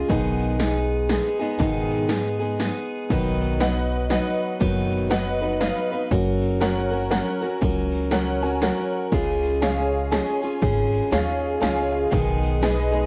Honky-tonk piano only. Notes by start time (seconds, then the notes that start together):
3.60 B4 D#5 F#5
4.11 B4 D#5 F#5
5.10 B4 D#5 F#5
5.60 B4 D#5 F5
6.61 A#4 C#5 F#5
7.10 A#4 C#5 F#5
8.12 A#4 C#5 F#5
8.43 G#5
8.63 A#4 C#5 F#5
9.62 G#4 C#5 F5
10.12 G#4 C#5 G#5
11.12 G#4 C#5 F5
11.61 G#4 C#5 F5 G#5
11.92 F5
12.63 G#4 B4 D#5